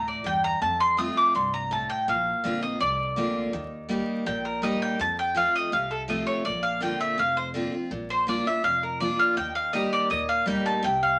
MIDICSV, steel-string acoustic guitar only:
0, 0, Header, 1, 2, 480
1, 0, Start_track
1, 0, Key_signature, -2, "major"
1, 0, Tempo, 365186
1, 803, Time_signature, 4, 2, 24, 8
1, 14708, End_track
2, 0, Start_track
2, 0, Title_t, "Steel-string acoustic guitar"
2, 0, Program_c, 0, 25
2, 0, Note_on_c, 0, 45, 85
2, 296, Note_off_c, 0, 45, 0
2, 318, Note_on_c, 0, 43, 87
2, 776, Note_off_c, 0, 43, 0
2, 808, Note_on_c, 0, 41, 82
2, 1277, Note_on_c, 0, 53, 90
2, 1285, Note_on_c, 0, 57, 88
2, 1297, Note_on_c, 0, 60, 93
2, 1305, Note_on_c, 0, 65, 102
2, 1718, Note_off_c, 0, 41, 0
2, 1736, Note_off_c, 0, 53, 0
2, 1740, Note_off_c, 0, 57, 0
2, 1746, Note_off_c, 0, 60, 0
2, 1750, Note_off_c, 0, 65, 0
2, 1769, Note_on_c, 0, 43, 85
2, 2222, Note_off_c, 0, 43, 0
2, 2247, Note_on_c, 0, 45, 89
2, 2701, Note_off_c, 0, 45, 0
2, 2734, Note_on_c, 0, 46, 87
2, 3203, Note_on_c, 0, 50, 91
2, 3216, Note_on_c, 0, 58, 90
2, 3224, Note_on_c, 0, 60, 92
2, 3233, Note_on_c, 0, 65, 98
2, 3417, Note_off_c, 0, 65, 0
2, 3433, Note_on_c, 0, 65, 58
2, 3435, Note_off_c, 0, 50, 0
2, 3441, Note_off_c, 0, 58, 0
2, 3445, Note_off_c, 0, 60, 0
2, 3465, Note_on_c, 0, 60, 44
2, 3641, Note_off_c, 0, 46, 0
2, 3668, Note_off_c, 0, 65, 0
2, 3684, Note_off_c, 0, 60, 0
2, 3685, Note_on_c, 0, 41, 85
2, 4157, Note_on_c, 0, 50, 90
2, 4170, Note_on_c, 0, 58, 93
2, 4179, Note_on_c, 0, 60, 93
2, 4187, Note_on_c, 0, 65, 93
2, 4597, Note_off_c, 0, 41, 0
2, 4616, Note_off_c, 0, 50, 0
2, 4623, Note_off_c, 0, 58, 0
2, 4627, Note_off_c, 0, 60, 0
2, 4631, Note_off_c, 0, 65, 0
2, 4643, Note_on_c, 0, 51, 86
2, 5108, Note_on_c, 0, 55, 83
2, 5116, Note_on_c, 0, 58, 96
2, 5128, Note_on_c, 0, 63, 91
2, 5136, Note_on_c, 0, 67, 100
2, 5555, Note_off_c, 0, 51, 0
2, 5572, Note_off_c, 0, 55, 0
2, 5576, Note_off_c, 0, 58, 0
2, 5582, Note_off_c, 0, 63, 0
2, 5586, Note_off_c, 0, 67, 0
2, 5603, Note_on_c, 0, 46, 90
2, 6071, Note_on_c, 0, 55, 82
2, 6085, Note_on_c, 0, 58, 88
2, 6094, Note_on_c, 0, 63, 93
2, 6103, Note_on_c, 0, 67, 107
2, 6515, Note_off_c, 0, 46, 0
2, 6534, Note_off_c, 0, 55, 0
2, 6540, Note_off_c, 0, 58, 0
2, 6545, Note_off_c, 0, 63, 0
2, 6549, Note_off_c, 0, 67, 0
2, 6565, Note_on_c, 0, 41, 90
2, 7027, Note_on_c, 0, 53, 89
2, 7040, Note_on_c, 0, 57, 101
2, 7048, Note_on_c, 0, 60, 97
2, 7058, Note_on_c, 0, 65, 108
2, 7476, Note_off_c, 0, 41, 0
2, 7491, Note_off_c, 0, 53, 0
2, 7498, Note_off_c, 0, 57, 0
2, 7502, Note_off_c, 0, 60, 0
2, 7507, Note_off_c, 0, 65, 0
2, 7521, Note_on_c, 0, 48, 88
2, 7990, Note_on_c, 0, 53, 87
2, 8002, Note_on_c, 0, 57, 90
2, 8012, Note_on_c, 0, 60, 95
2, 8021, Note_on_c, 0, 65, 94
2, 8434, Note_off_c, 0, 48, 0
2, 8453, Note_off_c, 0, 53, 0
2, 8459, Note_off_c, 0, 57, 0
2, 8464, Note_off_c, 0, 60, 0
2, 8468, Note_off_c, 0, 65, 0
2, 8474, Note_on_c, 0, 46, 83
2, 8945, Note_on_c, 0, 50, 94
2, 8955, Note_on_c, 0, 58, 85
2, 8964, Note_on_c, 0, 60, 97
2, 8976, Note_on_c, 0, 65, 94
2, 9391, Note_off_c, 0, 46, 0
2, 9410, Note_off_c, 0, 50, 0
2, 9415, Note_off_c, 0, 58, 0
2, 9420, Note_off_c, 0, 60, 0
2, 9426, Note_off_c, 0, 65, 0
2, 9435, Note_on_c, 0, 41, 83
2, 9908, Note_on_c, 0, 50, 89
2, 9920, Note_on_c, 0, 58, 85
2, 9929, Note_on_c, 0, 60, 91
2, 9940, Note_on_c, 0, 65, 91
2, 10132, Note_off_c, 0, 65, 0
2, 10147, Note_off_c, 0, 50, 0
2, 10147, Note_on_c, 0, 65, 55
2, 10153, Note_off_c, 0, 58, 0
2, 10158, Note_off_c, 0, 60, 0
2, 10177, Note_on_c, 0, 60, 48
2, 10351, Note_off_c, 0, 41, 0
2, 10385, Note_off_c, 0, 65, 0
2, 10396, Note_on_c, 0, 46, 87
2, 10399, Note_off_c, 0, 60, 0
2, 10867, Note_on_c, 0, 53, 90
2, 10883, Note_on_c, 0, 58, 101
2, 10891, Note_on_c, 0, 62, 92
2, 10896, Note_on_c, 0, 65, 93
2, 11100, Note_off_c, 0, 65, 0
2, 11106, Note_off_c, 0, 53, 0
2, 11114, Note_off_c, 0, 58, 0
2, 11116, Note_on_c, 0, 65, 62
2, 11118, Note_off_c, 0, 62, 0
2, 11144, Note_on_c, 0, 62, 49
2, 11311, Note_off_c, 0, 46, 0
2, 11349, Note_off_c, 0, 65, 0
2, 11354, Note_on_c, 0, 41, 83
2, 11363, Note_off_c, 0, 62, 0
2, 11835, Note_on_c, 0, 53, 82
2, 11844, Note_on_c, 0, 58, 90
2, 11851, Note_on_c, 0, 62, 92
2, 11861, Note_on_c, 0, 65, 101
2, 12270, Note_off_c, 0, 41, 0
2, 12294, Note_off_c, 0, 53, 0
2, 12298, Note_off_c, 0, 58, 0
2, 12302, Note_off_c, 0, 62, 0
2, 12307, Note_off_c, 0, 65, 0
2, 12314, Note_on_c, 0, 51, 86
2, 12792, Note_on_c, 0, 55, 96
2, 12802, Note_on_c, 0, 58, 98
2, 12810, Note_on_c, 0, 63, 93
2, 12819, Note_on_c, 0, 67, 101
2, 13229, Note_off_c, 0, 51, 0
2, 13252, Note_off_c, 0, 55, 0
2, 13257, Note_off_c, 0, 58, 0
2, 13261, Note_off_c, 0, 63, 0
2, 13266, Note_off_c, 0, 67, 0
2, 13275, Note_on_c, 0, 46, 91
2, 13744, Note_on_c, 0, 55, 94
2, 13758, Note_on_c, 0, 58, 89
2, 13767, Note_on_c, 0, 63, 97
2, 13776, Note_on_c, 0, 67, 99
2, 14189, Note_off_c, 0, 46, 0
2, 14208, Note_off_c, 0, 55, 0
2, 14215, Note_off_c, 0, 58, 0
2, 14219, Note_off_c, 0, 63, 0
2, 14224, Note_off_c, 0, 67, 0
2, 14230, Note_on_c, 0, 48, 94
2, 14708, Note_off_c, 0, 48, 0
2, 14708, End_track
0, 0, End_of_file